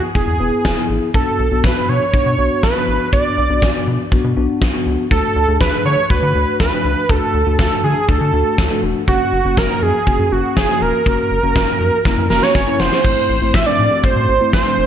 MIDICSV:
0, 0, Header, 1, 5, 480
1, 0, Start_track
1, 0, Tempo, 495868
1, 1107, Time_signature, 4, 2, 24, 8
1, 14389, End_track
2, 0, Start_track
2, 0, Title_t, "Analog synth lead"
2, 0, Program_c, 0, 81
2, 147, Note_on_c, 0, 68, 86
2, 829, Note_off_c, 0, 68, 0
2, 1108, Note_on_c, 0, 69, 86
2, 1588, Note_on_c, 0, 71, 90
2, 1603, Note_off_c, 0, 69, 0
2, 1828, Note_on_c, 0, 73, 102
2, 1842, Note_off_c, 0, 71, 0
2, 2542, Note_off_c, 0, 73, 0
2, 2548, Note_on_c, 0, 71, 101
2, 2994, Note_off_c, 0, 71, 0
2, 3028, Note_on_c, 0, 74, 108
2, 3709, Note_off_c, 0, 74, 0
2, 4947, Note_on_c, 0, 69, 102
2, 5394, Note_off_c, 0, 69, 0
2, 5427, Note_on_c, 0, 71, 98
2, 5651, Note_off_c, 0, 71, 0
2, 5668, Note_on_c, 0, 73, 105
2, 5891, Note_off_c, 0, 73, 0
2, 5908, Note_on_c, 0, 71, 109
2, 6354, Note_off_c, 0, 71, 0
2, 6388, Note_on_c, 0, 71, 100
2, 6868, Note_on_c, 0, 69, 99
2, 6882, Note_off_c, 0, 71, 0
2, 7343, Note_off_c, 0, 69, 0
2, 7349, Note_on_c, 0, 69, 88
2, 7571, Note_off_c, 0, 69, 0
2, 7589, Note_on_c, 0, 68, 83
2, 7830, Note_on_c, 0, 69, 90
2, 7845, Note_off_c, 0, 68, 0
2, 8549, Note_off_c, 0, 69, 0
2, 8790, Note_on_c, 0, 66, 100
2, 9269, Note_on_c, 0, 70, 108
2, 9284, Note_off_c, 0, 66, 0
2, 9509, Note_on_c, 0, 68, 104
2, 9524, Note_off_c, 0, 70, 0
2, 9989, Note_on_c, 0, 66, 92
2, 10003, Note_off_c, 0, 68, 0
2, 10223, Note_off_c, 0, 66, 0
2, 10229, Note_on_c, 0, 68, 102
2, 10470, Note_on_c, 0, 70, 104
2, 10484, Note_off_c, 0, 68, 0
2, 11903, Note_off_c, 0, 70, 0
2, 11909, Note_on_c, 0, 70, 91
2, 12028, Note_on_c, 0, 73, 94
2, 12043, Note_off_c, 0, 70, 0
2, 12388, Note_on_c, 0, 72, 103
2, 12402, Note_off_c, 0, 73, 0
2, 13107, Note_on_c, 0, 76, 104
2, 13121, Note_off_c, 0, 72, 0
2, 13221, Note_off_c, 0, 76, 0
2, 13227, Note_on_c, 0, 74, 105
2, 13587, Note_on_c, 0, 72, 103
2, 13602, Note_off_c, 0, 74, 0
2, 14061, Note_off_c, 0, 72, 0
2, 14067, Note_on_c, 0, 72, 98
2, 14389, Note_off_c, 0, 72, 0
2, 14389, End_track
3, 0, Start_track
3, 0, Title_t, "Tine electric piano"
3, 0, Program_c, 1, 4
3, 147, Note_on_c, 1, 64, 67
3, 148, Note_on_c, 1, 59, 71
3, 148, Note_on_c, 1, 68, 78
3, 348, Note_off_c, 1, 59, 0
3, 348, Note_off_c, 1, 64, 0
3, 348, Note_off_c, 1, 68, 0
3, 388, Note_on_c, 1, 59, 72
3, 388, Note_on_c, 1, 64, 61
3, 388, Note_on_c, 1, 71, 78
3, 688, Note_off_c, 1, 59, 0
3, 688, Note_off_c, 1, 64, 0
3, 688, Note_off_c, 1, 71, 0
3, 747, Note_on_c, 1, 59, 85
3, 747, Note_on_c, 1, 64, 78
3, 747, Note_on_c, 1, 68, 93
3, 1048, Note_off_c, 1, 59, 0
3, 1048, Note_off_c, 1, 64, 0
3, 1048, Note_off_c, 1, 68, 0
3, 1107, Note_on_c, 1, 59, 73
3, 1108, Note_on_c, 1, 62, 67
3, 1108, Note_on_c, 1, 66, 76
3, 1408, Note_off_c, 1, 59, 0
3, 1408, Note_off_c, 1, 62, 0
3, 1408, Note_off_c, 1, 66, 0
3, 1468, Note_on_c, 1, 59, 72
3, 1468, Note_on_c, 1, 62, 66
3, 1468, Note_on_c, 1, 66, 79
3, 1968, Note_off_c, 1, 59, 0
3, 1968, Note_off_c, 1, 62, 0
3, 1968, Note_off_c, 1, 66, 0
3, 2067, Note_on_c, 1, 66, 79
3, 2068, Note_on_c, 1, 59, 73
3, 2068, Note_on_c, 1, 62, 64
3, 2268, Note_off_c, 1, 59, 0
3, 2268, Note_off_c, 1, 62, 0
3, 2268, Note_off_c, 1, 66, 0
3, 2307, Note_on_c, 1, 62, 63
3, 2307, Note_on_c, 1, 66, 77
3, 2308, Note_on_c, 1, 59, 68
3, 2608, Note_off_c, 1, 59, 0
3, 2608, Note_off_c, 1, 62, 0
3, 2608, Note_off_c, 1, 66, 0
3, 2668, Note_on_c, 1, 59, 68
3, 2668, Note_on_c, 1, 62, 64
3, 2668, Note_on_c, 1, 66, 75
3, 2968, Note_off_c, 1, 59, 0
3, 2968, Note_off_c, 1, 62, 0
3, 2968, Note_off_c, 1, 66, 0
3, 3028, Note_on_c, 1, 59, 73
3, 3028, Note_on_c, 1, 62, 65
3, 3028, Note_on_c, 1, 66, 77
3, 3328, Note_off_c, 1, 59, 0
3, 3328, Note_off_c, 1, 62, 0
3, 3328, Note_off_c, 1, 66, 0
3, 3387, Note_on_c, 1, 59, 72
3, 3387, Note_on_c, 1, 62, 64
3, 3387, Note_on_c, 1, 66, 77
3, 3888, Note_off_c, 1, 59, 0
3, 3888, Note_off_c, 1, 62, 0
3, 3888, Note_off_c, 1, 66, 0
3, 3987, Note_on_c, 1, 59, 84
3, 3988, Note_on_c, 1, 62, 76
3, 3988, Note_on_c, 1, 66, 94
3, 4188, Note_off_c, 1, 59, 0
3, 4188, Note_off_c, 1, 62, 0
3, 4188, Note_off_c, 1, 66, 0
3, 4227, Note_on_c, 1, 59, 84
3, 4227, Note_on_c, 1, 62, 77
3, 4227, Note_on_c, 1, 66, 91
3, 4528, Note_off_c, 1, 59, 0
3, 4528, Note_off_c, 1, 62, 0
3, 4528, Note_off_c, 1, 66, 0
3, 4587, Note_on_c, 1, 59, 85
3, 4587, Note_on_c, 1, 66, 93
3, 4588, Note_on_c, 1, 62, 75
3, 4888, Note_off_c, 1, 59, 0
3, 4888, Note_off_c, 1, 62, 0
3, 4888, Note_off_c, 1, 66, 0
3, 4947, Note_on_c, 1, 62, 66
3, 4948, Note_on_c, 1, 57, 70
3, 4948, Note_on_c, 1, 66, 76
3, 5248, Note_off_c, 1, 57, 0
3, 5248, Note_off_c, 1, 62, 0
3, 5248, Note_off_c, 1, 66, 0
3, 5307, Note_on_c, 1, 57, 71
3, 5307, Note_on_c, 1, 62, 63
3, 5307, Note_on_c, 1, 68, 78
3, 5808, Note_off_c, 1, 57, 0
3, 5808, Note_off_c, 1, 62, 0
3, 5808, Note_off_c, 1, 68, 0
3, 5907, Note_on_c, 1, 57, 72
3, 5907, Note_on_c, 1, 66, 78
3, 5908, Note_on_c, 1, 62, 63
3, 6108, Note_off_c, 1, 57, 0
3, 6108, Note_off_c, 1, 62, 0
3, 6108, Note_off_c, 1, 66, 0
3, 6147, Note_on_c, 1, 57, 69
3, 6147, Note_on_c, 1, 66, 78
3, 6148, Note_on_c, 1, 62, 63
3, 6448, Note_off_c, 1, 57, 0
3, 6448, Note_off_c, 1, 62, 0
3, 6448, Note_off_c, 1, 66, 0
3, 6507, Note_on_c, 1, 57, 70
3, 6507, Note_on_c, 1, 62, 62
3, 6507, Note_on_c, 1, 66, 78
3, 6808, Note_off_c, 1, 57, 0
3, 6808, Note_off_c, 1, 62, 0
3, 6808, Note_off_c, 1, 66, 0
3, 6867, Note_on_c, 1, 57, 71
3, 6867, Note_on_c, 1, 62, 64
3, 6867, Note_on_c, 1, 66, 80
3, 7168, Note_off_c, 1, 57, 0
3, 7168, Note_off_c, 1, 62, 0
3, 7168, Note_off_c, 1, 66, 0
3, 7227, Note_on_c, 1, 57, 71
3, 7227, Note_on_c, 1, 62, 66
3, 7227, Note_on_c, 1, 66, 78
3, 7728, Note_off_c, 1, 57, 0
3, 7728, Note_off_c, 1, 62, 0
3, 7728, Note_off_c, 1, 66, 0
3, 7828, Note_on_c, 1, 57, 75
3, 7828, Note_on_c, 1, 62, 65
3, 7828, Note_on_c, 1, 66, 81
3, 8028, Note_off_c, 1, 57, 0
3, 8028, Note_off_c, 1, 62, 0
3, 8028, Note_off_c, 1, 66, 0
3, 8067, Note_on_c, 1, 57, 70
3, 8067, Note_on_c, 1, 62, 63
3, 8067, Note_on_c, 1, 66, 78
3, 8367, Note_off_c, 1, 66, 0
3, 8368, Note_off_c, 1, 57, 0
3, 8368, Note_off_c, 1, 62, 0
3, 8427, Note_on_c, 1, 57, 84
3, 8427, Note_on_c, 1, 62, 79
3, 8427, Note_on_c, 1, 66, 95
3, 8728, Note_off_c, 1, 57, 0
3, 8728, Note_off_c, 1, 62, 0
3, 8728, Note_off_c, 1, 66, 0
3, 8787, Note_on_c, 1, 58, 72
3, 8787, Note_on_c, 1, 61, 64
3, 8787, Note_on_c, 1, 66, 80
3, 9088, Note_off_c, 1, 58, 0
3, 9088, Note_off_c, 1, 61, 0
3, 9088, Note_off_c, 1, 66, 0
3, 9147, Note_on_c, 1, 58, 73
3, 9147, Note_on_c, 1, 61, 65
3, 9147, Note_on_c, 1, 66, 77
3, 9648, Note_off_c, 1, 58, 0
3, 9648, Note_off_c, 1, 61, 0
3, 9648, Note_off_c, 1, 66, 0
3, 9748, Note_on_c, 1, 58, 71
3, 9748, Note_on_c, 1, 61, 66
3, 9748, Note_on_c, 1, 66, 77
3, 9948, Note_off_c, 1, 58, 0
3, 9948, Note_off_c, 1, 61, 0
3, 9948, Note_off_c, 1, 66, 0
3, 9987, Note_on_c, 1, 58, 69
3, 9987, Note_on_c, 1, 61, 66
3, 9987, Note_on_c, 1, 66, 79
3, 10288, Note_off_c, 1, 58, 0
3, 10288, Note_off_c, 1, 61, 0
3, 10288, Note_off_c, 1, 66, 0
3, 10347, Note_on_c, 1, 58, 72
3, 10347, Note_on_c, 1, 61, 65
3, 10347, Note_on_c, 1, 66, 78
3, 10648, Note_off_c, 1, 58, 0
3, 10648, Note_off_c, 1, 61, 0
3, 10648, Note_off_c, 1, 66, 0
3, 10707, Note_on_c, 1, 58, 70
3, 10707, Note_on_c, 1, 61, 64
3, 10707, Note_on_c, 1, 66, 80
3, 11007, Note_off_c, 1, 58, 0
3, 11007, Note_off_c, 1, 61, 0
3, 11007, Note_off_c, 1, 66, 0
3, 11067, Note_on_c, 1, 58, 84
3, 11067, Note_on_c, 1, 61, 75
3, 11067, Note_on_c, 1, 66, 92
3, 11568, Note_off_c, 1, 58, 0
3, 11568, Note_off_c, 1, 61, 0
3, 11568, Note_off_c, 1, 66, 0
3, 11667, Note_on_c, 1, 58, 83
3, 11667, Note_on_c, 1, 61, 76
3, 11667, Note_on_c, 1, 64, 93
3, 11868, Note_off_c, 1, 58, 0
3, 11868, Note_off_c, 1, 61, 0
3, 11868, Note_off_c, 1, 64, 0
3, 11908, Note_on_c, 1, 58, 82
3, 11908, Note_on_c, 1, 61, 76
3, 11908, Note_on_c, 1, 66, 92
3, 11908, Note_on_c, 1, 82, 66
3, 12131, Note_off_c, 1, 82, 0
3, 12148, Note_on_c, 1, 80, 73
3, 12208, Note_off_c, 1, 58, 0
3, 12208, Note_off_c, 1, 61, 0
3, 12208, Note_off_c, 1, 66, 0
3, 12268, Note_on_c, 1, 58, 81
3, 12268, Note_on_c, 1, 61, 76
3, 12268, Note_on_c, 1, 64, 91
3, 12371, Note_off_c, 1, 80, 0
3, 12387, Note_on_c, 1, 78, 68
3, 12568, Note_off_c, 1, 58, 0
3, 12568, Note_off_c, 1, 61, 0
3, 12568, Note_off_c, 1, 64, 0
3, 12611, Note_off_c, 1, 78, 0
3, 12628, Note_on_c, 1, 57, 69
3, 12628, Note_on_c, 1, 60, 64
3, 12628, Note_on_c, 1, 64, 79
3, 12928, Note_off_c, 1, 57, 0
3, 12928, Note_off_c, 1, 60, 0
3, 12928, Note_off_c, 1, 64, 0
3, 12987, Note_on_c, 1, 57, 71
3, 12987, Note_on_c, 1, 60, 65
3, 12988, Note_on_c, 1, 64, 79
3, 13188, Note_off_c, 1, 57, 0
3, 13188, Note_off_c, 1, 60, 0
3, 13188, Note_off_c, 1, 64, 0
3, 13227, Note_on_c, 1, 57, 72
3, 13227, Note_on_c, 1, 60, 68
3, 13227, Note_on_c, 1, 62, 79
3, 13428, Note_off_c, 1, 57, 0
3, 13428, Note_off_c, 1, 60, 0
3, 13428, Note_off_c, 1, 62, 0
3, 13468, Note_on_c, 1, 57, 76
3, 13468, Note_on_c, 1, 60, 67
3, 13468, Note_on_c, 1, 66, 82
3, 13868, Note_off_c, 1, 57, 0
3, 13868, Note_off_c, 1, 60, 0
3, 13868, Note_off_c, 1, 66, 0
3, 13948, Note_on_c, 1, 57, 74
3, 13948, Note_on_c, 1, 60, 65
3, 13948, Note_on_c, 1, 64, 84
3, 14148, Note_off_c, 1, 57, 0
3, 14148, Note_off_c, 1, 60, 0
3, 14148, Note_off_c, 1, 64, 0
3, 14187, Note_on_c, 1, 57, 73
3, 14188, Note_on_c, 1, 60, 66
3, 14188, Note_on_c, 1, 62, 79
3, 14389, Note_off_c, 1, 57, 0
3, 14389, Note_off_c, 1, 60, 0
3, 14389, Note_off_c, 1, 62, 0
3, 14389, End_track
4, 0, Start_track
4, 0, Title_t, "Analog synth bass"
4, 0, Program_c, 2, 38
4, 147, Note_on_c, 2, 28, 102
4, 249, Note_off_c, 2, 28, 0
4, 267, Note_on_c, 2, 40, 97
4, 369, Note_off_c, 2, 40, 0
4, 387, Note_on_c, 2, 28, 99
4, 489, Note_off_c, 2, 28, 0
4, 628, Note_on_c, 2, 28, 100
4, 730, Note_off_c, 2, 28, 0
4, 867, Note_on_c, 2, 33, 88
4, 969, Note_off_c, 2, 33, 0
4, 1108, Note_on_c, 2, 35, 100
4, 1209, Note_off_c, 2, 35, 0
4, 1347, Note_on_c, 2, 35, 98
4, 1449, Note_off_c, 2, 35, 0
4, 1467, Note_on_c, 2, 35, 96
4, 1569, Note_off_c, 2, 35, 0
4, 1587, Note_on_c, 2, 35, 101
4, 1689, Note_off_c, 2, 35, 0
4, 1828, Note_on_c, 2, 47, 99
4, 1929, Note_off_c, 2, 47, 0
4, 2067, Note_on_c, 2, 35, 106
4, 2169, Note_off_c, 2, 35, 0
4, 2187, Note_on_c, 2, 47, 96
4, 2289, Note_off_c, 2, 47, 0
4, 2307, Note_on_c, 2, 35, 101
4, 2409, Note_off_c, 2, 35, 0
4, 2548, Note_on_c, 2, 35, 97
4, 2650, Note_off_c, 2, 35, 0
4, 2788, Note_on_c, 2, 33, 90
4, 2889, Note_off_c, 2, 33, 0
4, 3028, Note_on_c, 2, 35, 101
4, 3129, Note_off_c, 2, 35, 0
4, 3267, Note_on_c, 2, 35, 100
4, 3369, Note_off_c, 2, 35, 0
4, 3388, Note_on_c, 2, 35, 89
4, 3489, Note_off_c, 2, 35, 0
4, 3507, Note_on_c, 2, 35, 94
4, 3609, Note_off_c, 2, 35, 0
4, 3748, Note_on_c, 2, 47, 94
4, 3849, Note_off_c, 2, 47, 0
4, 3987, Note_on_c, 2, 35, 104
4, 4089, Note_off_c, 2, 35, 0
4, 4107, Note_on_c, 2, 47, 96
4, 4209, Note_off_c, 2, 47, 0
4, 4228, Note_on_c, 2, 35, 104
4, 4330, Note_off_c, 2, 35, 0
4, 4468, Note_on_c, 2, 35, 98
4, 4570, Note_off_c, 2, 35, 0
4, 4707, Note_on_c, 2, 37, 85
4, 4809, Note_off_c, 2, 37, 0
4, 4947, Note_on_c, 2, 38, 97
4, 5049, Note_off_c, 2, 38, 0
4, 5187, Note_on_c, 2, 38, 105
4, 5289, Note_off_c, 2, 38, 0
4, 5307, Note_on_c, 2, 38, 100
4, 5409, Note_off_c, 2, 38, 0
4, 5427, Note_on_c, 2, 38, 97
4, 5529, Note_off_c, 2, 38, 0
4, 5667, Note_on_c, 2, 50, 106
4, 5769, Note_off_c, 2, 50, 0
4, 5907, Note_on_c, 2, 38, 107
4, 6009, Note_off_c, 2, 38, 0
4, 6027, Note_on_c, 2, 50, 101
4, 6129, Note_off_c, 2, 50, 0
4, 6147, Note_on_c, 2, 38, 98
4, 6249, Note_off_c, 2, 38, 0
4, 6388, Note_on_c, 2, 38, 100
4, 6490, Note_off_c, 2, 38, 0
4, 6627, Note_on_c, 2, 37, 92
4, 6729, Note_off_c, 2, 37, 0
4, 6867, Note_on_c, 2, 38, 98
4, 6969, Note_off_c, 2, 38, 0
4, 7107, Note_on_c, 2, 38, 99
4, 7209, Note_off_c, 2, 38, 0
4, 7227, Note_on_c, 2, 38, 88
4, 7329, Note_off_c, 2, 38, 0
4, 7347, Note_on_c, 2, 38, 101
4, 7449, Note_off_c, 2, 38, 0
4, 7587, Note_on_c, 2, 50, 99
4, 7689, Note_off_c, 2, 50, 0
4, 7827, Note_on_c, 2, 38, 105
4, 7929, Note_off_c, 2, 38, 0
4, 7947, Note_on_c, 2, 50, 95
4, 8049, Note_off_c, 2, 50, 0
4, 8067, Note_on_c, 2, 38, 101
4, 8169, Note_off_c, 2, 38, 0
4, 8309, Note_on_c, 2, 38, 104
4, 8410, Note_off_c, 2, 38, 0
4, 8548, Note_on_c, 2, 28, 87
4, 8649, Note_off_c, 2, 28, 0
4, 8787, Note_on_c, 2, 30, 111
4, 8889, Note_off_c, 2, 30, 0
4, 9027, Note_on_c, 2, 30, 98
4, 9129, Note_off_c, 2, 30, 0
4, 9147, Note_on_c, 2, 30, 106
4, 9249, Note_off_c, 2, 30, 0
4, 9267, Note_on_c, 2, 30, 103
4, 9369, Note_off_c, 2, 30, 0
4, 9508, Note_on_c, 2, 42, 99
4, 9609, Note_off_c, 2, 42, 0
4, 9747, Note_on_c, 2, 30, 102
4, 9849, Note_off_c, 2, 30, 0
4, 9867, Note_on_c, 2, 42, 96
4, 9969, Note_off_c, 2, 42, 0
4, 9988, Note_on_c, 2, 30, 104
4, 10090, Note_off_c, 2, 30, 0
4, 10228, Note_on_c, 2, 30, 100
4, 10330, Note_off_c, 2, 30, 0
4, 10468, Note_on_c, 2, 28, 100
4, 10570, Note_off_c, 2, 28, 0
4, 10707, Note_on_c, 2, 30, 104
4, 10809, Note_off_c, 2, 30, 0
4, 10948, Note_on_c, 2, 30, 92
4, 11049, Note_off_c, 2, 30, 0
4, 11068, Note_on_c, 2, 30, 98
4, 11170, Note_off_c, 2, 30, 0
4, 11187, Note_on_c, 2, 30, 105
4, 11289, Note_off_c, 2, 30, 0
4, 11428, Note_on_c, 2, 42, 104
4, 11530, Note_off_c, 2, 42, 0
4, 11667, Note_on_c, 2, 30, 107
4, 11769, Note_off_c, 2, 30, 0
4, 11788, Note_on_c, 2, 42, 93
4, 11890, Note_off_c, 2, 42, 0
4, 11908, Note_on_c, 2, 30, 96
4, 12010, Note_off_c, 2, 30, 0
4, 12148, Note_on_c, 2, 30, 100
4, 12250, Note_off_c, 2, 30, 0
4, 12388, Note_on_c, 2, 30, 83
4, 12490, Note_off_c, 2, 30, 0
4, 12628, Note_on_c, 2, 33, 110
4, 12729, Note_off_c, 2, 33, 0
4, 12868, Note_on_c, 2, 33, 103
4, 12970, Note_off_c, 2, 33, 0
4, 12987, Note_on_c, 2, 33, 93
4, 13089, Note_off_c, 2, 33, 0
4, 13108, Note_on_c, 2, 33, 99
4, 13209, Note_off_c, 2, 33, 0
4, 13348, Note_on_c, 2, 45, 95
4, 13449, Note_off_c, 2, 45, 0
4, 13588, Note_on_c, 2, 33, 110
4, 13689, Note_off_c, 2, 33, 0
4, 13708, Note_on_c, 2, 45, 92
4, 13810, Note_off_c, 2, 45, 0
4, 13827, Note_on_c, 2, 33, 102
4, 13929, Note_off_c, 2, 33, 0
4, 14069, Note_on_c, 2, 33, 91
4, 14170, Note_off_c, 2, 33, 0
4, 14308, Note_on_c, 2, 30, 94
4, 14389, Note_off_c, 2, 30, 0
4, 14389, End_track
5, 0, Start_track
5, 0, Title_t, "Drums"
5, 147, Note_on_c, 9, 36, 101
5, 244, Note_off_c, 9, 36, 0
5, 628, Note_on_c, 9, 36, 102
5, 628, Note_on_c, 9, 38, 110
5, 725, Note_off_c, 9, 36, 0
5, 725, Note_off_c, 9, 38, 0
5, 1107, Note_on_c, 9, 36, 102
5, 1204, Note_off_c, 9, 36, 0
5, 1587, Note_on_c, 9, 36, 112
5, 1590, Note_on_c, 9, 38, 117
5, 1684, Note_off_c, 9, 36, 0
5, 1686, Note_off_c, 9, 38, 0
5, 2067, Note_on_c, 9, 36, 103
5, 2164, Note_off_c, 9, 36, 0
5, 2548, Note_on_c, 9, 38, 106
5, 2549, Note_on_c, 9, 36, 104
5, 2645, Note_off_c, 9, 36, 0
5, 2645, Note_off_c, 9, 38, 0
5, 3028, Note_on_c, 9, 36, 102
5, 3124, Note_off_c, 9, 36, 0
5, 3507, Note_on_c, 9, 36, 116
5, 3510, Note_on_c, 9, 38, 111
5, 3604, Note_off_c, 9, 36, 0
5, 3606, Note_off_c, 9, 38, 0
5, 3987, Note_on_c, 9, 36, 103
5, 4084, Note_off_c, 9, 36, 0
5, 4468, Note_on_c, 9, 36, 102
5, 4468, Note_on_c, 9, 38, 109
5, 4565, Note_off_c, 9, 36, 0
5, 4565, Note_off_c, 9, 38, 0
5, 4947, Note_on_c, 9, 36, 100
5, 5044, Note_off_c, 9, 36, 0
5, 5427, Note_on_c, 9, 36, 116
5, 5429, Note_on_c, 9, 38, 116
5, 5524, Note_off_c, 9, 36, 0
5, 5526, Note_off_c, 9, 38, 0
5, 5907, Note_on_c, 9, 36, 106
5, 6004, Note_off_c, 9, 36, 0
5, 6388, Note_on_c, 9, 36, 104
5, 6388, Note_on_c, 9, 38, 106
5, 6485, Note_off_c, 9, 36, 0
5, 6485, Note_off_c, 9, 38, 0
5, 6867, Note_on_c, 9, 36, 102
5, 6964, Note_off_c, 9, 36, 0
5, 7347, Note_on_c, 9, 36, 114
5, 7349, Note_on_c, 9, 38, 111
5, 7444, Note_off_c, 9, 36, 0
5, 7446, Note_off_c, 9, 38, 0
5, 7827, Note_on_c, 9, 36, 104
5, 7924, Note_off_c, 9, 36, 0
5, 8309, Note_on_c, 9, 36, 106
5, 8309, Note_on_c, 9, 38, 108
5, 8405, Note_off_c, 9, 38, 0
5, 8406, Note_off_c, 9, 36, 0
5, 8788, Note_on_c, 9, 36, 99
5, 8884, Note_off_c, 9, 36, 0
5, 9267, Note_on_c, 9, 36, 118
5, 9270, Note_on_c, 9, 38, 114
5, 9364, Note_off_c, 9, 36, 0
5, 9366, Note_off_c, 9, 38, 0
5, 9747, Note_on_c, 9, 36, 101
5, 9844, Note_off_c, 9, 36, 0
5, 10228, Note_on_c, 9, 38, 110
5, 10229, Note_on_c, 9, 36, 100
5, 10325, Note_off_c, 9, 36, 0
5, 10325, Note_off_c, 9, 38, 0
5, 10708, Note_on_c, 9, 36, 100
5, 10804, Note_off_c, 9, 36, 0
5, 11187, Note_on_c, 9, 36, 117
5, 11190, Note_on_c, 9, 38, 116
5, 11284, Note_off_c, 9, 36, 0
5, 11287, Note_off_c, 9, 38, 0
5, 11667, Note_on_c, 9, 36, 101
5, 11668, Note_on_c, 9, 38, 56
5, 11764, Note_off_c, 9, 36, 0
5, 11765, Note_off_c, 9, 38, 0
5, 11908, Note_on_c, 9, 38, 69
5, 12005, Note_off_c, 9, 38, 0
5, 12027, Note_on_c, 9, 38, 61
5, 12124, Note_off_c, 9, 38, 0
5, 12147, Note_on_c, 9, 38, 81
5, 12149, Note_on_c, 9, 36, 103
5, 12244, Note_off_c, 9, 38, 0
5, 12245, Note_off_c, 9, 36, 0
5, 12388, Note_on_c, 9, 38, 91
5, 12484, Note_off_c, 9, 38, 0
5, 12508, Note_on_c, 9, 38, 85
5, 12604, Note_off_c, 9, 38, 0
5, 12628, Note_on_c, 9, 36, 105
5, 12628, Note_on_c, 9, 49, 91
5, 12725, Note_off_c, 9, 36, 0
5, 12725, Note_off_c, 9, 49, 0
5, 13107, Note_on_c, 9, 36, 113
5, 13110, Note_on_c, 9, 38, 114
5, 13204, Note_off_c, 9, 36, 0
5, 13207, Note_off_c, 9, 38, 0
5, 13588, Note_on_c, 9, 36, 104
5, 13684, Note_off_c, 9, 36, 0
5, 14068, Note_on_c, 9, 38, 109
5, 14069, Note_on_c, 9, 36, 104
5, 14165, Note_off_c, 9, 38, 0
5, 14166, Note_off_c, 9, 36, 0
5, 14389, End_track
0, 0, End_of_file